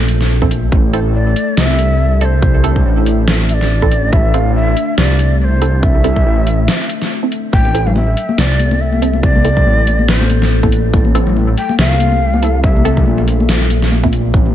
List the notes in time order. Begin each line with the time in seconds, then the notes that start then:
Already playing: A#1 A3 A4
0.09 closed hi-hat
0.21 snare
0.42 C4 E4 A4, kick
0.51 closed hi-hat
0.72 A1 D4, kick
0.93 C4 E4 A4 C5, closed hi-hat
1.15 D5
1.36 closed hi-hat
1.57 C2 E5, snare
1.79 closed hi-hat
2.21 C4 E4 A4 C5 D5, closed hi-hat
2.42 kick
2.64 C4 E4 A4, closed hi-hat
2.76 kick
2.85 A1
3.06 closed hi-hat
3.28 snare
3.49 E5, closed hi-hat
3.54 D5
3.61 snare
3.82 C4 E4 A4, kick
3.92 closed hi-hat
4.13 A1 E5, kick
4.34 C4 E4 A4 F5, closed hi-hat
4.56 E5
4.77 closed hi-hat
4.98 C2 D5, snare
5.19 closed hi-hat
5.40 C5 D5
5.62 C4 E4 A4, closed hi-hat
5.83 E5, kick
6.04 C4 E4 A4, closed hi-hat
6.16 kick
6.26 A1
6.47 closed hi-hat
6.68 snare
6.89 closed hi-hat
7.02 snare, closed hi-hat
7.23 C4 E4 A4
7.32 closed hi-hat
7.53 A1 A3 A4 G5, kick
7.65 muted conga, high conga
7.74 C4 E4 A4, closed hi-hat
7.87 F5, low conga
7.95 E5, muted conga, high conga
8.17 closed hi-hat
8.29 high conga
8.38 C2 D5, snare, muted conga
8.60 closed hi-hat, high conga
8.71 muted conga
8.81 E5
8.92 high conga
9.02 C4 E4 A4, closed hi-hat
9.13 muted conga
9.23 D5, kick
9.36 high conga
9.44 C4 E4 A4, closed hi-hat, muted conga
9.57 kick, low conga
9.66 A1, high conga
9.87 closed hi-hat, muted conga
9.99 high conga
10.08 B4, snare
10.20 C5, muted conga
10.29 closed hi-hat, high conga
10.42 snare
10.63 C4 E4 A4, kick, muted conga, high conga
10.72 closed hi-hat
10.94 A1, kick, muted conga
11.05 high conga
11.15 C4 E4 A4, closed hi-hat
11.27 low conga
11.36 muted conga, high conga
11.58 G5, closed hi-hat
11.69 muted conga, high conga
11.79 C2 F5, snare
11.99 closed hi-hat, high conga
12.12 muted conga
12.34 high conga
12.42 C4 E4 A4, closed hi-hat, muted conga
12.64 E5, kick
12.77 high conga
12.85 C4 E4 A4, closed hi-hat, muted conga
12.97 kick, low conga
13.06 A#1, high conga
13.18 muted conga
13.28 closed hi-hat
13.40 high conga
13.49 snare
13.61 muted conga, low conga
13.70 closed hi-hat, high conga
13.82 snare
13.92 muted conga
14.03 C4 E4 A4, kick, high conga
14.13 closed hi-hat
14.34 A1 C4, kick
14.46 muted conga, high conga